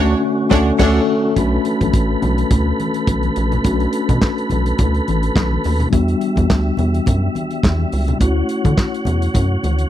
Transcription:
Already playing: D2 D3 A3 C#4 D4 F#4 C#5 F#5
0.02 F#4
0.50 D2 A3 C#4 D4 F#4 A4 C#5 D5 F#5, kick, snare
0.78 D2 A3 C#4 D4 F#4 A4 C#5 F#5, kick, snare, crash
1.34 B1 A3 C#4 D4 F#4 A4 B4 B5, kick, closed hi-hat, muted conga
1.65 closed hi-hat, muted conga
1.81 B1, kick, closed hi-hat, high conga
1.93 A1, kick, closed hi-hat
2.22 B1, closed hi-hat, muted conga, high conga, low conga
2.38 closed hi-hat
2.51 D2, kick, closed hi-hat, low conga
2.80 closed hi-hat, muted conga, high conga
2.94 closed hi-hat
3.07 B1, kick, closed hi-hat, high conga
3.23 closed hi-hat, high conga
3.36 A#1, closed hi-hat
3.52 closed hi-hat, low conga
3.63 B1 A3 C#4 D4 F#4, kick, closed hi-hat, muted conga
3.80 closed hi-hat
3.93 closed hi-hat
4.08 B2, kick, closed hi-hat, high conga
4.21 kick, snare, clap
4.38 closed hi-hat
4.50 B1, closed hi-hat, high conga, low conga
4.66 closed hi-hat
4.78 D2, kick, closed hi-hat, low conga
4.95 closed hi-hat
5.08 A1, closed hi-hat, high conga
5.23 closed hi-hat
5.36 B1, kick, snare, clap, high conga
5.51 high conga
5.64 D#2, snare, open hi-hat
5.80 closed hi-hat, low conga
5.90 E2 G3 B3 D4 F#4 E5, kick, closed hi-hat, muted conga
6.08 closed hi-hat
6.21 closed hi-hat, muted conga
6.36 E2, kick, closed hi-hat, high conga
6.50 D2, kick, snare, clap
6.77 E2, closed hi-hat, muted conga, high conga, low conga
6.94 closed hi-hat
7.06 F#2, kick, closed hi-hat, muted conga, low conga
7.35 closed hi-hat, muted conga, high conga
7.51 closed hi-hat
7.63 E2, kick, snare, clap, high conga
7.79 high conga
7.92 C#2, open hi-hat, muted conga
8.08 closed hi-hat, low conga
8.19 D2 A3 C#4 E4 F#4 C#5 F#5, kick, closed hi-hat
8.49 closed hi-hat
8.64 D3, kick, closed hi-hat, high conga
8.77 kick, snare, clap, muted conga
8.94 closed hi-hat
9.05 E2, closed hi-hat, high conga, low conga
9.22 closed hi-hat
9.34 F#2, kick, closed hi-hat, muted conga, low conga
9.63 D2, closed hi-hat, muted conga, high conga
9.79 closed hi-hat

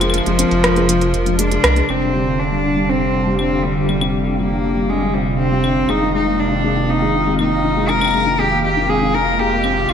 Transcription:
Already playing: F1 C3 F3 G#3 F4 A#4
0.01 G#3, closed hi-hat, claves
0.10 claves
0.14 F3, closed hi-hat
0.18 claves
0.26 F1 G#3, closed hi-hat
0.39 C4, closed hi-hat
0.51 F1, closed hi-hat
0.64 F3, cross-stick, closed hi-hat
0.76 G#3, closed hi-hat
0.89 F3, closed hi-hat
1.01 F4, closed hi-hat
1.14 F1, closed hi-hat
1.26 F3, closed hi-hat
1.39 G#3 D4, closed hi-hat
1.51 G#3, closed hi-hat
1.64 C2, cross-stick, closed hi-hat, claves
1.76 G#3, closed hi-hat
1.89 F1 C3 D3 G3 C4 D4 F4 G4 F5, claves
2.01 D3
2.14 G3
2.26 D3
2.39 D4
2.51 G3
2.64 D3
2.76 G3
2.89 C4
3.14 D3
3.26 G3
3.39 D3 C4, claves
3.51 D4
3.64 G3
3.76 D3
3.89 G3 C4, claves
4.01 C4, claves
4.26 D3
4.39 G3 A#3
4.52 D3
4.64 D4
4.77 G3
4.89 D3 G#3
5.02 G3
5.14 G3 C4
5.39 D3 C4
5.51 G3
5.64 D3, claves
5.77 D4
5.89 F1 D#3 G#3 A#3 C4 D#4, claves
6.02 D#3
6.14 G#3 D#4
6.26 A#3
6.39 D4
6.51 D#3
6.64 G#3
6.76 D#3
6.89 C4 D#4
7.01 G#3
7.14 D#3
7.26 G#3
7.39 A#3 D#4, claves
7.64 D#3
7.76 G#3
7.89 D#3 A#4, claves
8.01 C4, claves
8.05 claves
8.11 G#3, claves
8.14 claves
8.20 claves
8.23 D#3, claves
8.39 G#3 G4
8.51 A#3
8.64 G4
8.76 D#3
8.89 G#3 G#4
9.01 D#3
9.14 D#3 A#4
9.39 G#3 G4
9.51 A#3
9.64 C4, claves
9.89 F1 D3 F3 F4, claves

